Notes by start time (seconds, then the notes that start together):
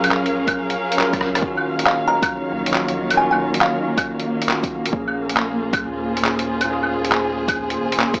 Already playing: A#1 F#3 C#4 F4 G#4 A#4 F5
0.04 closed hi-hat, claves
0.11 clap
0.26 closed hi-hat
0.47 kick, closed hi-hat, claves
0.70 closed hi-hat
0.92 closed hi-hat
0.96 F#3 C#4 F4, clap
1.00 A#4
1.13 kick, cross-stick, closed hi-hat
1.21 C#2, cross-stick
1.35 D#3, cross-stick, closed hi-hat
1.41 D#1 D#3 C#4 F4, kick
1.47 F#4
1.57 F#3 A#3, claves
1.72 C#5
1.79 closed hi-hat
1.86 F5, clap
2.08 A#5
2.22 kick, closed hi-hat, claves
2.52 A#1
2.66 closed hi-hat
2.72 D#3 C#4 F4 F#4, clap
2.88 closed hi-hat
3.10 D#3, closed hi-hat, claves
3.16 C#4 F4 G#5
3.22 F#4
3.31 G#5, claves
3.54 D#1, closed hi-hat
3.61 F5, clap
3.97 kick, closed hi-hat, claves
4.05 D#1
4.20 closed hi-hat
4.42 closed hi-hat
4.47 D#3 C#4 F4 F#4, clap
4.63 kick, closed hi-hat
4.86 A#2, closed hi-hat
4.91 A#1 A#2 A#3 C#4, kick
4.97 G#4
5.08 claves
5.23 F4
5.29 G#4, closed hi-hat
5.37 clap
5.73 kick, closed hi-hat, claves
5.81 D#2
5.90 C5
6.17 closed hi-hat
6.22 A#2 A#3 C#4 G#4, clap
6.39 closed hi-hat
6.61 A#2, closed hi-hat, claves
6.67 A#3 C#4
6.73 G#4
6.83 claves
7.05 closed hi-hat
7.12 clap
7.48 kick, closed hi-hat, claves
7.70 closed hi-hat
7.78 G#1
7.92 closed hi-hat
7.97 G#1 A#2 A#3 C#4 G#4, clap
8.14 kick, closed hi-hat